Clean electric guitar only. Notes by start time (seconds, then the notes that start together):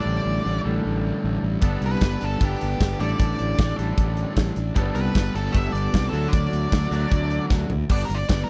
Already playing: A2 D3 G3 D4 A4
0.65 A2 D3 G3 D4 A4
1.61 G3 B3 D4 A4
2.40 G3 B3 D4 A4
2.99 A2 D3 G3 D4 A4
3.76 A2 D3 G3 D4 A4
4.75 G3 B3 D4 A4
5.53 G3 B3 D4 A4
6.12 D3 F#3 A3 D4 F#4
6.91 D3 F#3 A3 D4 F#4
7.89 G3 B3 D4
8.09 G3 B3
8.29 G3 B3